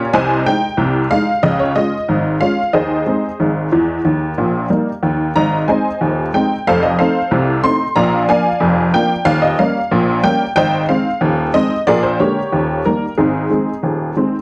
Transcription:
Already playing: G4 A#4
0.13 C2 C3 C5 D#5 G#5
0.46 G#3 D#4 G5
0.77 C2 C3
1.11 G#3 D#4 F5
1.43 C#2 C#3 D#5
1.59 C#5
1.76 G#3 C#4 F4 D#5
2.08 G#1 G#2
2.41 G#3 C#4 F4 F5
2.73 D#2 D#3 G#4 C5 D#5
3.07 G#3 C4 D#4
3.40 G#1 G#2
3.72 E2 E3
4.04 D#2 D#3
4.38 A#1 A#2
4.70 G3 A#3 D#4
5.03 D#2 D#3
5.36 G#1 G#2 D#5 A#5
5.68 G#3 C4 D#4 C5 D#5 G#5
6.01 D#1 D#2
6.34 G#3 C4 D#4 G5
6.67 F1 F2 A4 C5 F5
6.83 D#5
6.99 A3 C4 D#4 A4 C5 F5
7.31 C2 C3
7.64 A3 C4 D#4 C6
7.96 A#1 A#2 D5 F5 A#5
8.29 F3 A#3 D4 D5 F5 G#5
8.60 F1 F2
8.94 F3 A#3 D4 G5
9.25 D#1 D#2 F5
9.42 D#5
9.59 G3 A#3 C#4 F5
9.91 A#1 A#2
10.24 G3 A#3 C#4 G5
10.56 G#1 G#2 C5 D#5 G5
10.89 D#3 G#3 C4 F5
11.21 D#1 D#2
11.54 D#3 G#3 C4 D#5
11.87 A#1 A#2 G#4 A#4 D5
12.03 C5
12.20 D3 G#3 A#3 G4 A#4 C#5
12.52 D#1 D#2
12.85 D#3 G3 A#3 A#4
13.18 G#1 G#2 C4 D#4 G#4
13.50 D#3 G#3 C4
13.83 D#1 D#2
14.16 D#3 G#3 C4

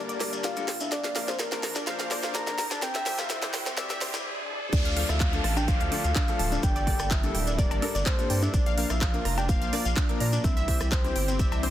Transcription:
Already playing: G2 D3 G3 A#3 D4 A#4 A5, riser
0.09 D5, closed hi-hat, shekere
0.20 G2 G3 A#3 D4 A#4, snare, open hi-hat
0.33 D5, closed hi-hat, shekere
0.43 D4 F5, snare, closed hi-hat, shekere
0.56 G2 G3 A#3 D4 A4, closed hi-hat, shekere
0.68 G5, snare, open hi-hat
0.81 D4 E5, closed hi-hat, shekere
0.92 A#2 F3 D4 A#4 D5, snare, closed hi-hat, shekere
1.04 F5, snare, closed hi-hat, shekere
1.16 A#2 F3 A#3 D4 A#4 F5, snare, open hi-hat
1.28 C5 F5, snare, closed hi-hat, shekere
1.39 A#4, snare, closed hi-hat, shekere
1.52 A#2 F3 A#3 D4 A#4, snare, closed hi-hat, shekere
1.63 A#5, snare, open hi-hat
1.75 D4, snare, closed hi-hat, shekere
1.87 A#2 F3 A#3 D4 C5 F5, snare, closed hi-hat, shekere
2.00 F5, snare, closed hi-hat, shekere
2.11 A#2 F3 A#3 D4 C5 D5, snare, open hi-hat
2.23 F5, snare, closed hi-hat, shekere
2.35 D4 A#5, snare, closed hi-hat, shekere
2.47 A#2 F3 A#3 D4 A#4, snare, closed hi-hat, shekere
2.58 A#5, snare, open hi-hat
2.71 D4 A5, snare, closed hi-hat, shekere
2.82 C3 G3 C4 E4 C5 G5, snare, closed hi-hat, shekere
2.95 E5, snare, closed hi-hat, shekere
3.06 E3 C4 G4 C5 E5, snare, open hi-hat
3.18 E5 F5, snare, closed hi-hat, shekere
3.29 E5, snare, closed hi-hat, shekere
3.42 E3 C4 G4 C5, snare, closed hi-hat, shekere
3.54 G5, snare, open hi-hat
3.66 C4, snare, closed hi-hat, shekere
3.77 E3 C4 G4 D5 E5, snare, closed hi-hat, swell, shekere
3.90 E5, snare, closed hi-hat, shekere
4.01 E3 C4 G4 C5 D5, snare, open hi-hat
4.14 E4, snare, closed hi-hat, shekere
4.73 D2 D3 D4 F4 A4 D5, kick, closed hi-hat, crash, downlifter, shekere
4.85 F5, closed hi-hat, shekere
4.97 F3 A3 D4 A4 F5, open hi-hat
5.09 D2 E5 F5, cross-stick, closed hi-hat, shekere
5.20 F5, kick, clap, closed hi-hat, cowbell
5.33 F3 A3 D4 A4, closed hi-hat, high conga, shekere
5.44 A1 A5, cross-stick, open hi-hat
5.57 D4 G5, closed hi-hat, cowbell, shekere
5.68 F3 A3 D4 C5 F5, kick, closed hi-hat, shekere
5.80 D2 F5, closed hi-hat, shekere
5.92 F3 A3 D4 A4 D5, open hi-hat, high conga
6.04 D2 F5, closed hi-hat, shekere
6.16 D4 F5, kick, clap, closed hi-hat, shekere
6.28 F3 A3 D4 A4, closed hi-hat, high woodblock, shekere
6.39 D1 A5, open hi-hat
6.52 D4, closed hi-hat, high conga, shekere
6.63 G1 G3 A#3 D4 G5, kick, closed hi-hat, shekere
6.76 D5, closed hi-hat, shekere
6.87 G2 G3 A#3 D4 A4 D5, kick, open hi-hat
6.99 G1 D5, cross-stick, closed hi-hat, shekere
7.11 E5, kick, clap, closed hi-hat, cowbell, shekere
7.23 G2 G3 A#3 D4 A4, closed hi-hat, high conga, shekere
7.35 D1 G5, open hi-hat
7.47 D4, closed hi-hat, shekere
7.58 G2 G3 A#3 D4 A#4 D5, kick, closed hi-hat, shekere
7.71 G1 D5, closed hi-hat, cowbell, shekere
7.82 G2 G3 A#3 D4 A4 A#4, open hi-hat, high conga, high woodblock
7.95 G1 D5, closed hi-hat, shekere
8.06 D4 C5, kick, clap, closed hi-hat, shekere
8.19 G2 G3 A#3 D4 A4, closed hi-hat, shekere
8.30 G2 G5, open hi-hat
8.42 D4 E5, closed hi-hat, high conga, shekere
8.54 A#1 A#3 D4 F4 D5, kick, closed hi-hat, shekere
8.66 F5, closed hi-hat, shekere
8.78 A#2 F3 A#3 D4 A#4 F5, open hi-hat
8.90 A#1 E5 F5, cross-stick, closed hi-hat, shekere
9.01 F5, kick, clap, closed hi-hat, cowbell, shekere
9.14 A#2 F3 A#3 D4 A#4, closed hi-hat, high conga, shekere
9.25 F1 A#5, cross-stick, open hi-hat
9.38 D4 G5, closed hi-hat, cowbell, shekere
9.49 A#2 F3 A#3 D4 C5 F5, kick, closed hi-hat, shekere
9.62 A#1 F5, closed hi-hat, shekere
9.73 A#2 F3 A#3 D4 A#4 D5, open hi-hat, high conga
9.85 A#1 F5, closed hi-hat, shekere
9.96 D4, kick, clap, closed hi-hat, shekere
10.09 A#2 F3 A#3 D4 A#4, closed hi-hat, high woodblock, shekere
10.20 A#2 D5 A#5, open hi-hat
10.33 D4, closed hi-hat, high conga, shekere
10.44 C2 C3 C4 E4 G4 E5, kick, closed hi-hat, shekere
10.57 E5, closed hi-hat, shekere
10.68 E3 C4 G4 C5 E5, kick, open hi-hat
10.80 C2 E5, cross-stick, closed hi-hat, shekere
10.91 C5, kick, clap, closed hi-hat, cowbell, shekere
11.04 E3 C4 G4 C5, closed hi-hat, high conga, shekere
11.16 G1 G5, open hi-hat
11.28 C4, closed hi-hat, shekere
11.39 E3 C4 G4 D5 E5, kick, closed hi-hat, shekere
11.52 C2 E5, closed hi-hat, cowbell, shekere
11.63 E3 C4 G4 C5, open hi-hat, high conga, high woodblock

